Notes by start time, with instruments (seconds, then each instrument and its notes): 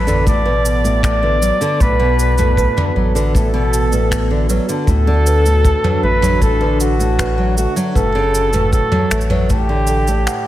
Already playing: analog synth bass A1, ambient pad B3 F#4 A4 D5, flugelhorn B4, celesta B4
0.07 nylon-string guitar D3, mid tom, cabasa
0.26 nylon-string guitar A2, flugelhorn D5, kick, cabasa
0.45 nylon-string guitar B2, celesta B4
0.65 cabasa
0.84 nylon-string guitar A2, cabasa
1.03 flugelhorn D5, finger snap, kick, cabasa
1.23 nylon-string guitar D3, celesta B4
1.42 nylon-string guitar F#3, cabasa
1.61 nylon-string guitar D3, cabasa
1.80 analog synth bass B1, nylon-string guitar A2, flugelhorn B4, celesta B4, kick, cabasa
1.99 nylon-string guitar B2
2.19 cabasa
2.38 nylon-string guitar A2, mid tom, cabasa
2.57 celesta B4, kick, cabasa
2.77 nylon-string guitar D3, mid tom
2.96 analog synth bass A1, nylon-string guitar F#3
3.15 nylon-string guitar D3, celesta B4, cabasa
3.34 nylon-string guitar A2, flugelhorn A4, kick, cabasa
3.54 nylon-string guitar B2
3.73 cabasa
3.92 nylon-string guitar A2, celesta B4, cabasa
4.11 finger snap, kick, cabasa
4.31 nylon-string guitar D3
4.50 nylon-string guitar F#3, celesta B4, cabasa
4.69 nylon-string guitar D3, cabasa
4.87 analog synth bass D2, nylon-string guitar A2, ambient pad D3 D4 F#4, flugelhorn A4, kick, cabasa
5.07 nylon-string guitar D3
5.26 celesta B4, cabasa
5.46 nylon-string guitar A2, cabasa
5.65 kick, cabasa
5.84 nylon-string guitar F#3, celesta B4, mid tom
6.03 analog synth bass A1, nylon-string guitar A3, flugelhorn B4
6.22 nylon-string guitar F#3, mid tom, cabasa
6.42 nylon-string guitar A2, flugelhorn A4, kick, cabasa
6.61 nylon-string guitar D3, celesta B4
6.80 flugelhorn F#4, cabasa
6.99 nylon-string guitar A2, cabasa
7.19 celesta B4, finger snap, kick, cabasa
7.38 nylon-string guitar F#3
7.57 nylon-string guitar A3, flugelhorn F#4, cabasa
7.76 nylon-string guitar F#3, cabasa
7.95 analog synth bass F#1, nylon-string guitar A2, ambient pad F#3 F#4 C#5, flugelhorn A4, celesta B4, kick, cabasa
8.15 nylon-string guitar C#3
8.35 cabasa
8.53 nylon-string guitar A2, celesta B4, mid tom, cabasa
8.73 flugelhorn A4, kick, cabasa
8.92 nylon-string guitar F#3, mid tom
9.11 analog synth bass A1, nylon-string guitar A3, finger snap, cabasa
9.21 cabasa
9.30 nylon-string guitar F#3, celesta B4, mid tom
9.49 nylon-string guitar A2, ambient pad A3 E4 G4 D5, flugelhorn G4, kick, cabasa
9.69 nylon-string guitar D3
9.87 celesta A4, cabasa
10.07 nylon-string guitar A2, cabasa
10.27 celesta F#5, finger snap, cabasa